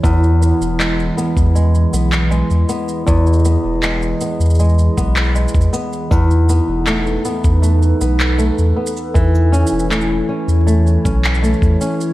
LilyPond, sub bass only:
\new Staff \with { instrumentName = "Sub bass" } { \clef bass \time 4/4 \key e \major \tempo 4 = 79 e,8. e,,8. r16 e,8. b,,8. e,16 r8 | e,8. e,,8. r16 e,8. b,,8. e,16 r8 | e,8. e,,8. r16 e,8. b,,8. e,16 r8 | e,8. e,,8. r16 e,8. b,,8. e,16 r8 | }